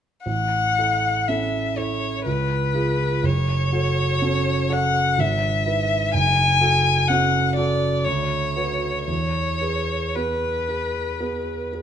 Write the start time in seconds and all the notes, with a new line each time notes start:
0.26 A1 F#5
0.78 E4 A4
1.28 C#4 E4 A4 E5
1.77 E4 A4 C#5
2.26 C#2 B4
2.75 F4 G#4
3.23 F#1 C#5
3.73 F#4 A4
4.22 C#4 F#4 A4
4.69 F#4 A4 F#5
5.18 G#1 E5
5.66 E4 B4
6.14 F#1 G#5
6.61 F#4 A4
7.08 C#4 F#4 A4 F#5
7.56 F#4 A4 D5
8.04 D2 C#5
8.56 F#4 B4
9.05 E2 C#5
9.61 G#4 B4
10.15 B3 G#4 B4
10.69 G#4 B4
11.20 B3 G#4 B4
11.73 G#4 B4